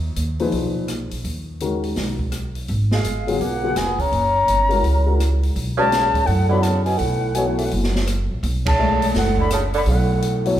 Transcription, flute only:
2.94 3.38 F5 medium
3.42 3.79 F#5 medium
3.77 4.03 G#5 medium
4.01 5.21 A#5 medium
5.79 6.28 A5 medium
6.26 6.49 F#5 medium
6.50 6.64 B5 medium
6.63 6.84 A5 medium
6.84 6.99 G#5 medium
6.98 7.37 F#5 medium
7.35 7.48 G#5 medium
7.46 7.59 F#5 medium
7.58 7.67 E5 medium
7.66 7.72 F#5 medium
8.68 9.12 A5 medium
9.18 9.38 F#5 medium
9.40 9.51 B5 medium
9.54 9.60 A5 medium
9.77 9.82 B5 medium
9.90 10.56 F#5 medium

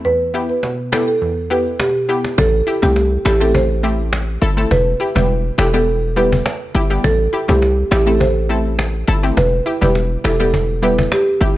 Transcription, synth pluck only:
0.05 0.49 E2 medium
0.34 0.46 B3 medium
0.34 0.47 E4 medium
0.34 0.47 G4 medium
0.63 1.07 B2 medium
0.92 1.05 B3 medium
0.92 1.05 E4 medium
0.92 1.05 G4 medium
1.22 1.66 E2 medium
1.50 1.63 B3 medium
1.50 1.63 E4 medium
1.50 1.63 G4 medium
1.80 2.24 B2 medium
2.09 2.21 B3 medium
2.09 2.21 E4 medium
2.09 2.22 G4 medium
2.67 2.73 E4 medium
2.67 2.74 G4 medium
2.82 2.93 A3 medium
2.82 2.94 C4 medium
2.82 2.94 E4 medium
2.82 2.94 G4 medium
3.25 3.31 E4 medium
3.25 3.32 A4 medium
3.40 3.52 A3 medium
3.40 3.52 C4 medium
3.40 3.52 E4 medium
3.40 3.52 G4 medium
3.83 3.96 A3 medium
3.83 3.96 C4 medium
3.83 3.96 E4 medium
3.83 3.96 G4 medium
4.42 4.48 E4 medium
4.42 4.48 A4 loud
4.57 4.68 A3 medium
4.57 4.68 C4 medium
4.57 4.68 E4 medium
4.57 4.69 A4 medium
5.00 5.06 E4 medium
5.00 5.07 G4 medium
5.15 5.26 G3 medium
5.15 5.27 B3 medium
5.15 5.27 E4 medium
5.15 5.27 G4 medium
5.58 5.64 E4 medium
5.58 5.65 G4 medium
5.73 5.85 G3 medium
5.73 5.85 B3 medium
5.73 5.85 E4 medium
5.73 5.85 G4 medium
6.16 6.29 G3 medium
6.16 6.29 B3 medium
6.16 6.29 E4 medium
6.16 6.29 G4 medium
6.75 6.81 E4 medium
6.75 6.81 G4 loud
6.90 7.01 G3 medium
6.90 7.01 B3 medium
6.90 7.01 E4 medium
6.90 7.02 G4 medium
7.33 7.39 E4 medium
7.33 7.40 G4 medium
7.48 7.59 A3 medium
7.48 7.60 C4 medium
7.48 7.60 E4 medium
7.48 7.60 G4 medium
7.91 7.97 E4 medium
7.91 7.98 G4 medium
8.06 8.18 A3 medium
8.06 8.18 C4 medium
8.06 8.18 E4 medium
8.06 8.18 A4 medium
8.49 8.62 A3 medium
8.49 8.62 C4 medium
8.49 8.62 E4 medium
8.49 8.62 A4 medium
9.08 9.14 E4 medium
9.08 9.14 A4 loud
9.23 9.34 A3 medium
9.23 9.34 C4 medium
9.23 9.35 E4 medium
9.23 9.35 G4 medium
9.66 9.72 E4 medium
9.66 9.73 G4 medium
9.81 9.92 G3 medium
9.81 9.93 B3 medium
9.81 9.93 E4 medium
9.81 9.93 G4 medium
10.24 10.31 E4 medium
10.24 10.31 G4 medium
10.40 10.51 G3 medium
10.40 10.51 B3 medium
10.40 10.51 E4 medium
10.40 10.51 G4 medium
10.82 10.95 G3 medium
10.82 10.95 B3 medium
10.82 10.95 E4 medium
10.82 10.95 G4 medium
11.41 11.47 E4 medium
11.41 11.47 G4 medium

